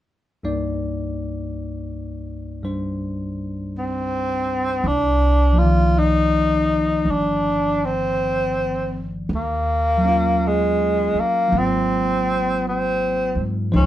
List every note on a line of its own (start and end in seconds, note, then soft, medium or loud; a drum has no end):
0.43 4.85 C2 soft
0.43 2.61 G2 soft
0.43 4.86 A#3 soft
0.43 4.86 D#4 soft
0.43 4.86 D5 soft
2.62 4.84 G2 soft
2.62 4.85 G3 soft
2.62 4.85 D4 soft
2.62 4.85 C5 soft
3.78 4.89 C4 medium
4.84 7.03 C2 medium
4.84 5.60 D4 medium
5.53 9.28 F3 soft
5.53 9.29 A#3 soft
5.59 6.00 F4 medium
5.59 9.31 D5 soft
5.63 9.32 D#3 soft
5.98 7.12 D#4 medium
7.05 9.25 G1 medium
7.11 7.86 D4 medium
7.85 9.14 C4 medium
9.29 11.10 D#2 medium
9.34 10.48 A#3 medium
9.97 11.47 F#3 soft
9.97 11.49 A#3 soft
10.05 11.53 C#4 soft
10.05 11.55 F4 medium
10.47 11.21 G#3 medium
11.14 muted upright bass stroke soft
11.19 11.60 A#3 medium
11.48 13.71 F#3 soft
11.48 13.73 A#3 soft
11.52 13.32 G#1 medium
11.52 13.75 C4 soft
11.58 12.66 C4 medium
11.58 13.77 F4 soft
12.68 13.54 C4 medium
13.35 13.70 G#2 medium
13.72 13.86 C#2 medium
13.72 13.86 F3 soft
13.72 13.86 G#3 soft
13.72 13.86 C#4 medium
13.72 13.86 D#4 medium
13.72 13.86 C5 soft